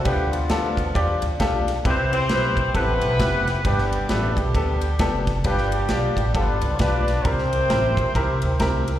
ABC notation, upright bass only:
X:1
M:4/4
L:1/8
Q:"Swing" 1/4=133
K:C
V:1 name="Upright bass" clef=bass
D,,2 D,,2 E,, D,, B,,,2 | C,,2 B,,,2 A,,, B,,, F,,,2 | G,,,2 A,,, B,,, D,,2 F,,,2 | G,,,2 B,,, A,,, G,,, C,, B,,,2 |
C,,2 A,,, _B,,, C,, D,, C,,2 |]